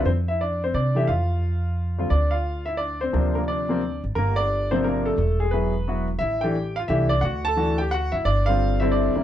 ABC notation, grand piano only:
X:1
M:3/4
L:1/8
Q:"Swing" 1/4=176
K:Cmix
V:1 name="Grand piano"
[Cc] [Ee] [Dd] [Cc] [Dd] [Ee] | [Ff]4- [Ff] z | [K:Dm] [Dd] [Ff]2 [Ee] [Dd] [Cc]- | [Cc] [B,B] [Dd]3 z |
[B,B] [Dd]2 [Cc] [B,B] [A,A]- | [A,A] [^G,^G] =B3 z | [Ee] [Gg]2 [Ff] [Ee] [Dd] | [^F^f] [Aa]2 [Gg] [Ff] [Ee] |
[Dd] f2 e [Dd]2 |]
V:2 name="Grand piano"
z4 z [E,A,DG] | z4 z [D,G,CF] | [K:Dm] z6 | [C,F,B,D]3 [C,F,B,C] z2 |
z3 [C,F,B,D]3 | z2 [^F,=B,E^G] z [F,B,E^F] z | z [E,A,D] z2 [E,A,DG] z | z2 [E,A,D^F] z3 |
z [D,G,CF]2 [D,G,CE]2 [G,B,^CE] |]